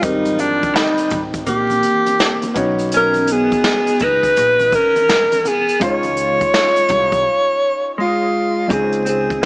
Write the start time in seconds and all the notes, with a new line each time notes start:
0.01 G#1 D#3 G3 C4 D#4 G4 A#4, kick, closed hi-hat, shaker
0.25 closed hi-hat, high conga, shaker
0.37 F3 D4, closed hi-hat, shaker
0.63 kick, closed hi-hat, shaker
0.74 G3 D#4, snare, shaker
0.98 muted upright bass stroke, closed hi-hat, shaker
1.10 G#1, kick, closed hi-hat, low conga, shaker
1.34 kick, closed hi-hat, shaker
1.46 A#1 A#3 G4, kick, closed hi-hat, shaker
1.70 closed hi-hat, high conga, shaker
1.83 closed hi-hat, high conga, shaker
2.06 closed hi-hat, high conga, shaker
2.20 snare, low conga, shaker
2.42 closed hi-hat, high conga, shaker
2.54 B1 B3 C#4 D#4 F#4 C#5, kick, closed hi-hat, low conga, shaker
2.79 closed hi-hat, shaker
2.92 C#4, closed hi-hat, shaker
2.97 A#4
3.14 closed hi-hat, high conga, shaker
3.27 B3, closed hi-hat, shaker
3.33 G#4
3.52 kick, closed hi-hat, shaker
3.64 snare, shaker
3.87 muted upright bass stroke, closed hi-hat, shaker
3.99 C#2 D#4 B4, kick, closed hi-hat, low conga, shaker
4.23 kick, closed hi-hat, shaker
4.37 A#1, closed hi-hat, shaker
4.59 closed hi-hat, high conga, shaker
4.72 C#4 A#4, kick, closed hi-hat, high conga, shaker
4.96 closed hi-hat, high conga, shaker
5.09 snare, low conga, shaker
5.32 closed hi-hat, high conga, shaker
5.45 B3 G#4, closed hi-hat, low conga, shaker
5.69 closed hi-hat, shaker
5.80 C#2 G#3 C#4 D#4 F4 C#5, kick, closed hi-hat, shaker
5.84 C#5
6.03 closed hi-hat, high conga, shaker
6.16 closed hi-hat, shaker
6.41 kick, closed hi-hat, shaker
6.54 snare, shaker
6.76 muted upright bass stroke, closed hi-hat, shaker
6.89 C2, kick, closed hi-hat, low conga, shaker
7.12 kick, closed hi-hat, shaker
7.98 G#3 F4
8.68 C#2 C#3 G#3 C4 D#4 F4 C5, kick, closed hi-hat
8.73 G#4
8.92 closed hi-hat
9.05 C4 G#4, closed hi-hat
9.30 kick, closed hi-hat
9.42 C#4